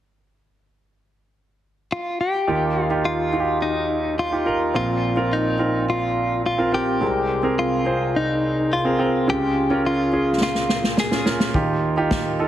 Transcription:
1.92 clean electric guitar F4
2.21 clean electric guitar G4
2.47 grand piano D#2 D#3 D#4 F4 G4
2.84 clean electric guitar F4
2.90 grand piano D#4 F4 G4
3.05 clean electric guitar F4
3.33 grand piano D#4 F4 F#4
3.40 grand piano G4
3.62 clean electric guitar D#4
4.19 clean electric guitar F4
4.32 grand piano D#4 F4 G4
4.46 grand piano D#4 F4 A#4
4.74 grand piano A#1 A#2 C4 F4 A#4, clean electric guitar F4
5.16 grand piano C4 F4 A#4
5.33 clean electric guitar D#4
5.59 grand piano C4 F4 A#4
5.90 clean electric guitar F4
6.46 clean electric guitar F4
6.58 grand piano C4 F4 A#4
6.72 grand piano C4 F4 A#4, clean electric guitar G4
7.01 grand piano C2 C3 G#3 C4 A#4
7.43 grand piano C4 G#4 A#4
7.59 clean electric guitar F4
7.86 grand piano C4 G#4 C5
8.16 clean electric guitar D#4
8.73 clean electric guitar F4
8.85 grand piano C4 G#4 A#4
8.99 grand piano C4 G#4 A#4
9.27 grand piano C#2 C#3 G#3 C#4 F4, clean electric guitar G4
9.70 grand piano C#4 F4 A#4
9.86 clean electric guitar F4
10.13 grand piano C#4 F4 G#4
10.41 clean electric guitar F4, snare
10.55 snare
10.69 snare
10.84 snare
10.97 clean electric guitar G#4, snare
11.11 grand piano C#4 F4 G#4, snare
11.25 grand piano C#4 F4 A#4, snare
11.40 snare
11.54 grand piano D#2 D#3 D#4 F4 G4, kick
11.97 grand piano D#4 F4 G4
12.11 kick, snare
12.39 grand piano D#4 F4 A4

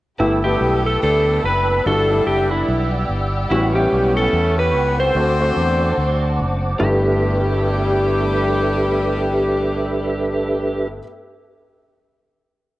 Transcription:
0.19 fingered electric bass G1, grand piano G2 A3 B3 E4 G4, horn section E3 A3 B3 E4, string section A3 B3 E4 G4, electric slide guitar E4, tonewheel organ B4 G5 A5 E6
0.43 horn section G3 B3 E4 G4, grand piano A3 B3 E4 G4, electric slide guitar G4
0.61 fingered electric bass B1
0.85 horn section A3 A4, electric slide guitar A4
1.02 fingered electric bass D2, horn section A3 D4 E4 A4, electric slide guitar A4
1.44 fingered electric bass F#1, horn section B3 D4 E4 B4, electric slide guitar B4
1.85 fingered electric bass G1, grand piano G2 G3 D4 E4 F#4, string section G3 D4 E4 G4, horn section A3 D4 E4 A4, electric slide guitar A4, tonewheel organ D5 F#5
2.10 grand piano G3 D4 E4 A4
2.26 fingered electric bass F#1, horn section G3 G4, electric slide guitar G4
2.51 horn section E3 B3 E4, electric slide guitar E4
2.68 fingered electric bass B1
3.09 fingered electric bass G1
3.50 fingered electric bass A1, grand piano A2 G3 B3 C#4 F#4, horn section E3 G3 C#4 E4, string section B3 C#4, electric slide guitar E4, tonewheel organ B4 G5 C#6
3.74 horn section G3 B3 C#4 G4, grand piano G3 B3 C#4 E4, electric slide guitar G4
3.92 fingered electric bass B1
4.15 horn section A3 C#4 E4 A4, electric slide guitar A4
4.33 fingered electric bass E2
4.57 horn section B3 E4 G4 B4, electric slide guitar B4
4.75 fingered electric bass C#2
4.99 horn section C4 F#4 A4 C5, electric slide guitar C5
5.15 fingered electric bass D2, grand piano D3 A3 C4 D4 F#4, string section A3 C4 D4 F#4, tonewheel organ C5 F#5 A5 D6
5.40 grand piano A3 C4 D4 F#4
5.56 fingered electric bass E2
5.97 fingered electric bass D2
6.39 fingered electric bass F#1
6.79 fingered electric bass G1, grand piano G2 A3 B3 E4 G4, horn section G3 G4, string section A3 B3 E4 G4, tonewheel organ D4 G4 A4 B4 E5, electric slide guitar G4

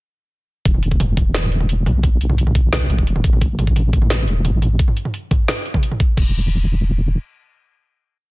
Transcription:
0.65 wobble bass E1, kick, closed hi-hat
0.74 mid tom
0.83 closed hi-hat
0.91 kick
1.00 closed hi-hat, mid tom
1.17 kick, closed hi-hat, mid tom
1.35 snare, closed hi-hat
1.43 mid tom
1.52 closed hi-hat
1.61 mid tom
1.69 closed hi-hat
1.86 wobble bass B1, closed hi-hat, mid tom
2.03 kick, closed hi-hat, mid tom
2.21 closed hi-hat
2.30 mid tom
2.38 closed hi-hat
2.47 mid tom
2.55 kick, closed hi-hat
2.73 snare, closed hi-hat, mid tom
2.90 wobble bass B1, closed hi-hat, mid tom
2.98 wobble bass E1, kick
3.07 closed hi-hat
3.16 mid tom
3.24 wobble bass A1, kick, closed hi-hat
3.33 mid tom
3.41 kick, closed hi-hat
3.59 closed hi-hat, mid tom
3.67 kick
3.76 closed hi-hat, mid tom
3.93 kick, closed hi-hat
4.02 mid tom
4.10 snare, closed hi-hat
4.19 mid tom
4.28 wobble bass E1, closed hi-hat
4.45 closed hi-hat, mid tom
4.53 wobble bass A1
4.62 closed hi-hat, mid tom
4.79 kick, closed hi-hat
4.88 mid tom
4.97 closed hi-hat
5.05 mid tom
5.14 closed hi-hat
5.31 kick, closed hi-hat, mid tom
5.48 snare, closed hi-hat, mid tom
5.66 closed hi-hat
5.74 kick, mid tom
5.83 closed hi-hat
5.92 mid tom
6.00 kick, closed hi-hat
6.17 wobble bass E1, kick, crash

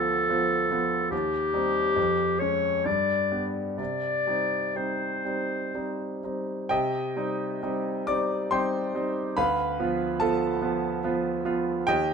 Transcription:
Already playing: grand piano D2 F3 B3 F4, clarinet A4
0.29 grand piano F3 B3 F4
0.71 grand piano F3 B3 F4
1.11 grand piano D#2, clarinet G4
1.54 grand piano G3 C4 D#4
1.96 grand piano F2
2.39 grand piano G#3 C#4, clarinet C#5
2.85 grand piano G2, clarinet D5
3.32 grand piano G3 B3 D4
3.77 grand piano C3, clarinet D5
4.27 grand piano G3 C4 D#4
4.75 grand piano G3 C4 D#4, clarinet C5
5.25 grand piano G3 C4 D#4
5.75 grand piano G3 C4 D#4
6.24 grand piano G3 C4 D#4
6.69 grand piano C3 G4 D#5 G5
7.16 grand piano G3 C4 D#4
7.63 grand piano G3 C4 D#4
8.07 grand piano G3 C4 D#4 D5 D6
8.51 grand piano G3 C4 D#4 C5 G5 C6
8.95 grand piano G3 C4 D#4
9.37 grand piano D2 B4 F5 B5
9.80 grand piano F3 B3 F4
10.20 grand piano F3 B3 F4 A4 A5
10.61 grand piano F3 B3 F4
11.04 grand piano F3 B3 F4
11.45 grand piano F3 B3 F4
11.87 grand piano D#2 G4 D#5 G5

